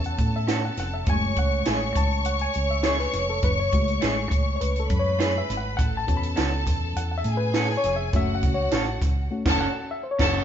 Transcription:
0.00 0.14 E2 medium
0.00 1.04 B3 medium
0.00 1.04 C#4 medium
0.00 1.04 F#4 medium
0.00 1.04 A4 medium
0.00 1.04 A5 loud
0.00 closed hi-hat soft
0.06 0.35 F#5 medium
0.18 0.69 A2 loud
0.18 kick medium
0.18 closed hi-hat medium
0.36 0.65 E5 medium
0.47 0.59 C#4 medium
0.47 0.59 F#4 medium
0.47 0.59 A4 medium
0.47 snare loud
0.47 closed hi-hat medium
0.65 0.78 F#5 medium
0.77 1.03 F1 medium
0.77 0.94 F#5 medium
0.77 snare soft
0.77 closed hi-hat medium
0.94 1.08 E5 medium
1.06 1.32 F#1 loud
1.06 3.39 G#3 medium
1.06 3.40 A3 medium
1.06 3.40 F#4 medium
1.06 4.87 C#5 medium
1.06 1.39 G#5 loud
1.06 4.87 C#6 medium
1.06 kick loud
1.06 closed hi-hat medium
1.36 1.62 C#2 medium
1.36 1.98 F#5 loud
1.36 kick medium
1.36 closed hi-hat medium
1.65 1.92 A1 medium
1.65 1.77 A3 medium
1.65 1.77 C#4 medium
1.65 1.77 G#4 medium
1.65 snare loud
1.65 closed hi-hat medium
1.95 2.46 C#2 medium
1.95 2.24 A5 loud
1.95 kick medium
1.95 snare soft
1.95 closed hi-hat loud
2.25 2.32 F#5 loud
2.25 closed hi-hat medium
2.39 2.68 G#5 loud
2.39 closed hi-hat soft
2.54 3.05 C#2 medium
2.54 closed hi-hat medium
2.71 2.85 E5 medium
2.83 2.95 A3 medium
2.83 2.95 C#4 medium
2.83 2.95 G#4 medium
2.83 2.92 C#5 loud
2.83 snare loud
2.83 closed hi-hat medium
2.99 3.30 B4 medium
2.99 snare soft
3.13 3.39 F1 medium
3.13 snare soft
3.13 closed hi-hat medium
3.30 3.43 A4 medium
3.43 3.68 F#1 loud
3.43 3.51 B4 loud
3.43 kick loud
3.43 closed hi-hat medium
3.60 4.14 C#5 medium
3.73 3.98 C#2 medium
3.73 5.75 G#3 medium
3.73 5.75 A3 soft
3.73 5.75 F#4 medium
3.73 kick medium
3.73 closed hi-hat medium
3.88 closed hi-hat medium
4.01 4.27 A1 medium
4.01 4.13 A3 loud
4.01 4.13 C#4 loud
4.01 4.13 G#4 loud
4.01 snare loud
4.01 closed hi-hat medium
4.31 4.56 C#2 medium
4.31 kick medium
4.31 closed hi-hat medium
4.56 4.61 C#5 medium
4.61 4.86 C#2 medium
4.61 4.81 B4 medium
4.61 closed hi-hat medium
4.76 closed hi-hat soft
4.80 4.98 A4 medium
4.90 5.40 F#2 loud
4.90 5.77 B4 medium
4.90 5.77 B5 medium
4.90 kick loud
4.90 closed hi-hat medium
4.99 5.40 C#5 medium
5.19 5.30 A3 medium
5.19 5.30 C#4 medium
5.19 5.31 G#4 medium
5.19 snare loud
5.19 closed hi-hat loud
5.38 5.59 E5 medium
5.50 5.75 G#1 loud
5.50 snare soft
5.50 closed hi-hat medium
5.57 5.76 F#5 medium
5.77 6.04 A1 loud
5.77 7.23 A4 medium
5.77 5.96 F#5 loud
5.77 7.23 A5 medium
5.77 kick loud
5.77 closed hi-hat medium
5.97 6.18 A5 loud
6.07 6.33 E2 medium
6.07 8.09 B3 medium
6.07 8.10 C#4 medium
6.07 8.10 F#4 medium
6.07 kick medium
6.07 closed hi-hat medium
6.17 6.30 B5 medium
6.23 closed hi-hat medium
6.36 6.63 C#2 medium
6.36 6.48 C#4 medium
6.36 6.48 F#4 medium
6.36 6.48 A4 medium
6.36 snare loud
6.36 closed hi-hat medium
6.66 6.92 E2 medium
6.66 kick medium
6.66 snare soft
6.66 closed hi-hat loud
6.96 7.21 E2 medium
6.96 7.03 F#5 loud
6.96 closed hi-hat medium
7.11 7.16 F#5 medium
7.18 7.37 E5 loud
7.24 7.75 A2 loud
7.24 8.12 G#4 medium
7.24 8.12 G#5 medium
7.24 closed hi-hat medium
7.37 7.73 B4 loud
7.54 7.66 C#4 medium
7.54 7.66 F#4 medium
7.54 7.66 A4 loud
7.54 snare loud
7.54 closed hi-hat medium
7.69 snare soft
7.77 7.94 C#5 medium
7.83 8.09 F1 loud
7.83 snare soft
7.83 closed hi-hat medium
7.96 8.15 E5 medium
8.13 8.44 F#1 medium
8.13 8.53 A3 medium
8.13 8.53 C#4 medium
8.13 8.53 F#4 medium
8.13 9.30 F#4 medium
8.13 8.35 E5 loud
8.13 9.30 F#5 medium
8.13 kick loud
8.13 closed hi-hat medium
8.35 8.54 F#5 medium
8.43 8.68 C#2 medium
8.43 kick medium
8.43 closed hi-hat medium
8.54 8.81 C#5 medium
8.71 8.98 A1 medium
8.71 8.83 C#4 medium
8.71 8.83 F#4 medium
8.71 8.83 A4 loud
8.71 snare loud
8.71 closed hi-hat medium
9.01 9.27 C#2 medium
9.01 kick medium
9.01 snare soft
9.01 closed hi-hat medium
9.31 9.58 A3 medium
9.31 9.58 C#4 soft
9.31 9.58 F#4 medium
9.46 9.66 F#1 medium
9.46 9.66 C#4 loud
9.46 9.66 F#4 loud
9.46 9.66 A4 loud
9.46 9.67 A4 loud
9.46 9.67 A5 loud
9.46 kick loud
9.46 snare loud
9.46 crash medium
9.60 9.91 F#5 loud
9.91 10.02 E5 loud
10.03 10.10 C5 medium
10.11 10.44 C#5 medium
10.19 10.39 F#1 loud
10.19 10.39 C#4 loud
10.19 10.39 F#4 loud
10.19 10.40 A4 loud
10.19 10.40 A5 loud
10.19 kick loud
10.19 snare loud
10.19 crash medium

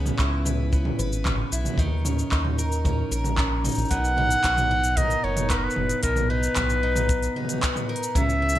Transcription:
0.00 0.11 C#2 medium
0.00 1.78 C#3 medium
0.00 0.71 B3 medium
0.06 mid tom medium
0.06 cabasa soft
0.19 0.91 C#2 medium
0.19 1.51 E4 medium
0.19 kick medium
0.19 clap medium
0.19 cabasa soft
0.45 0.98 B4 medium
0.45 mid tom medium
0.45 cabasa medium
0.72 1.24 B3 medium
0.72 kick medium
0.72 cabasa soft
0.85 mid tom medium
0.99 1.44 G#1 medium
0.99 1.84 B4 medium
0.99 cabasa medium
1.13 cabasa soft
1.25 1.84 B3 medium
1.25 kick medium
1.25 clap medium
1.25 mid tom medium
1.25 cabasa soft
1.52 1.68 B1 medium
1.52 1.84 E4 medium
1.52 cabasa medium
1.65 mid tom medium
1.65 cabasa soft
1.74 2.23 D#2 medium
1.74 kick medium
1.74 mid tom medium
1.79 5.29 D#3 medium
1.79 cabasa soft
1.83 mid tom medium
2.05 2.84 C#4 medium
2.05 mid tom medium
2.05 cabasa medium
2.19 cabasa soft
2.32 3.03 D#2 medium
2.32 3.64 D#4 medium
2.32 kick medium
2.32 clap medium
2.32 cabasa soft
2.45 mid tom medium
2.58 3.11 A#4 medium
2.58 cabasa medium
2.72 cabasa soft
2.85 3.37 C#4 medium
2.85 kick medium
2.85 mid tom medium
2.85 cabasa soft
3.11 3.69 A#1 medium
3.11 4.47 A#4 medium
3.11 cabasa medium
3.24 mid tom medium
3.24 cabasa soft
3.38 3.96 C#4 medium
3.38 kick loud
3.38 clap medium
3.38 cabasa soft
3.64 4.17 D#4 medium
3.64 mid tom medium
3.64 cabasa medium
3.68 cabasa medium
3.71 cabasa soft
3.75 3.86 A#1 loud
3.75 cabasa soft
3.78 cabasa soft
3.85 cabasa soft
3.88 4.36 B1 loud
3.88 6.02 B2 medium
3.88 4.98 F#5 loud
3.88 kick loud
3.88 open hi-hat medium
3.88 cabasa soft
3.91 cabasa medium
4.04 cabasa soft
4.17 4.70 D#4 medium
4.17 mid tom medium
4.31 open hi-hat soft
4.31 cabasa medium
4.44 5.16 B1 medium
4.44 5.50 B3 medium
4.44 kick loud
4.44 clap loud
4.44 open hi-hat medium
4.44 cabasa medium
4.57 mid tom medium
4.57 cabasa soft
4.71 5.23 D#4 medium
4.84 open hi-hat soft
4.84 cabasa medium
4.97 5.77 A#4 medium
4.97 5.25 D#5 loud
4.97 kick loud
4.97 mid tom medium
4.97 open hi-hat medium
4.97 cabasa medium
5.10 open hi-hat soft
5.10 cabasa soft
5.24 5.68 F#1 medium
5.24 6.29 D#4 medium
5.24 5.52 C#5 medium
5.37 mid tom medium
5.37 open hi-hat soft
5.37 cabasa medium
5.50 6.56 B3 medium
5.50 5.58 B4 medium
5.50 kick loud
5.50 clap medium
5.50 open hi-hat medium
5.50 cabasa soft
5.57 5.65 A#4 medium
5.64 6.02 B4 medium
5.70 cabasa soft
5.76 5.93 F#1 medium
5.76 mid tom medium
5.89 open hi-hat soft
5.89 cabasa medium
6.03 6.48 B1 loud
6.03 8.16 B2 medium
6.03 6.31 A#4 medium
6.03 kick loud
6.03 open hi-hat medium
6.03 cabasa medium
6.16 mid tom medium
6.16 cabasa soft
6.29 6.82 D#4 medium
6.29 7.89 B4 loud
6.43 cabasa medium
6.56 7.28 B1 medium
6.56 7.62 B3 medium
6.56 kick loud
6.56 clap loud
6.56 mid tom medium
6.56 open hi-hat medium
6.56 cabasa medium
6.70 cabasa soft
6.83 7.35 D#4 medium
6.96 mid tom medium
6.96 cabasa medium
7.09 kick loud
7.09 open hi-hat medium
7.09 cabasa medium
7.22 open hi-hat soft
7.22 cabasa soft
7.36 8.21 D#4 medium
7.36 mid tom soft
7.40 mid tom soft
7.45 mid tom soft
7.49 mid tom medium
7.49 open hi-hat soft
7.49 cabasa medium
7.54 mid tom medium
7.58 mid tom medium
7.63 8.59 B3 medium
7.63 kick loud
7.63 clap loud
7.63 open hi-hat medium
7.63 cabasa medium
7.76 mid tom medium
7.76 cabasa soft
7.89 8.21 A#4 medium
7.96 open hi-hat soft
8.03 cabasa medium
8.15 8.59 C#2 loud
8.15 8.59 C#3 medium
8.15 8.59 E5 loud
8.15 kick loud
8.15 mid tom medium
8.15 open hi-hat medium
8.15 cabasa medium
8.30 cabasa soft
8.42 8.59 E4 medium
8.49 cabasa medium
8.55 mid tom medium
8.55 open hi-hat soft

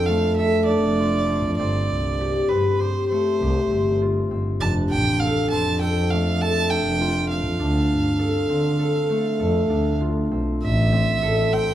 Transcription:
0.00 0.81 F2 medium
0.00 1.29 C4 medium
0.00 0.69 D4 medium
0.00 0.38 A4 medium
0.06 3.11 A3 medium
0.06 0.36 F5 medium
0.36 2.58 A4 medium
0.36 0.65 E5 medium
0.65 3.49 D4 medium
0.65 1.54 D5 medium
0.84 1.47 F1 medium
0.99 3.51 F4 medium
1.30 1.59 C4 medium
1.45 1.59 F2 medium
1.57 1.74 G1 medium
1.57 2.50 C4 medium
1.57 2.50 D5 medium
1.90 2.47 C2 medium
2.21 2.81 G4 medium
2.49 2.78 G2 medium
2.49 3.71 C4 medium
2.49 2.81 B4 medium
2.79 3.42 G4 medium
2.79 3.08 C5 medium
3.09 6.11 A3 medium
3.09 3.96 C5 medium
3.41 3.68 C2 medium
3.41 5.78 G4 medium
3.71 4.27 G1 medium
3.71 4.31 C4 medium
4.02 6.54 F4 medium
4.31 4.45 G1 medium
4.31 5.51 C4 medium
4.60 4.75 F1 medium
4.60 6.71 D4 medium
4.60 4.74 A5 medium
4.90 5.18 A1 medium
4.90 5.21 G5 medium
5.19 5.80 A4 medium
5.19 5.50 F5 medium
5.50 6.82 F2 medium
5.50 7.30 C4 medium
5.50 5.78 A5 medium
5.81 6.41 A4 medium
5.81 6.12 G5 medium
6.10 9.09 A3 medium
6.10 6.43 F5 medium
6.41 8.19 A4 medium
6.41 6.71 A5 medium
6.70 7.59 D4 medium
6.70 7.30 G5 medium
6.86 7.48 F1 medium
7.00 9.53 F4 medium
7.31 8.49 C4 medium
7.31 9.98 F5 medium
7.46 7.59 F2 medium
7.60 7.74 D2 medium
7.60 9.69 D4 medium
7.90 8.46 G2 medium
8.19 8.79 A4 medium
8.49 8.77 D3 medium
8.49 10.31 C4 medium
8.79 9.39 A4 medium
9.09 11.74 A3 medium
9.40 9.68 F2 medium
9.40 11.22 A4 medium
9.70 10.28 D2 medium
9.70 11.74 D4 medium
10.01 11.74 F4 medium
10.31 10.45 B1 medium
10.31 10.92 C4 medium
10.63 11.19 A1 loud
10.63 11.54 E5 medium
10.93 11.52 C4 medium
11.22 11.64 A1 medium
11.22 11.74 A4 medium
11.52 11.74 C4 medium
11.52 11.74 G5 medium
11.69 11.74 A1 medium

